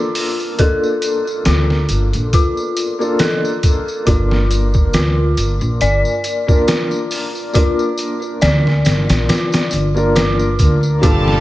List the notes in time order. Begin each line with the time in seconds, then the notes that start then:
Already playing: A#3 D4 F4 A4
0.15 open hi-hat, tambourine
0.40 tambourine
0.58 A#3 D4 F4 A4, kick, closed hi-hat, tambourine
0.83 tambourine
1.02 closed hi-hat, tambourine
1.27 tambourine
1.45 D2 F4, snare, closed hi-hat, tambourine
1.70 snare
1.89 G1, closed hi-hat, tambourine
2.13 A#1, closed hi-hat, tambourine
2.33 F4, kick, closed hi-hat, tambourine
2.57 tambourine
2.76 closed hi-hat, tambourine
2.99 A#3 D4 F4 A4, tambourine
3.19 A4, snare, closed hi-hat, tambourine
3.45 tambourine
3.63 kick, closed hi-hat, tambourine
3.88 tambourine
4.05 G1 A#3 D4 F4 A#4, kick, closed hi-hat, tambourine
4.31 snare
4.51 closed hi-hat, tambourine
4.74 kick, tambourine
4.93 D2 F4, snare, closed hi-hat, tambourine
5.37 G1, closed hi-hat, tambourine
5.61 A#1, tambourine
5.81 G1 D5, closed hi-hat, tambourine
6.05 tambourine
6.24 closed hi-hat, tambourine
6.47 A#3 D4 F4 A#4, kick, tambourine
6.68 F4, snare, closed hi-hat, tambourine
6.91 tambourine
7.11 open hi-hat, tambourine
7.35 tambourine
7.53 A#3 D4 F4 A#4, kick, closed hi-hat, tambourine
7.79 tambourine
7.98 closed hi-hat, tambourine
8.22 tambourine
8.41 D2 D5, snare, closed hi-hat, tambourine
8.67 snare
8.85 G1, snare, closed hi-hat, tambourine
9.09 A#1, snare, closed hi-hat, tambourine
9.29 F4, snare, closed hi-hat, tambourine
9.52 snare, closed hi-hat, tambourine
9.71 G1, closed hi-hat, tambourine
9.95 A#3 D4 F4 A#4, tambourine
10.15 F4, snare, closed hi-hat, tambourine
10.39 tambourine
10.59 D2, kick, closed hi-hat, tambourine
10.83 tambourine
11.01 G1 A#2 G3 D4 F4 G4 A4 F5 A5, kick, closed hi-hat, tambourine
11.28 snare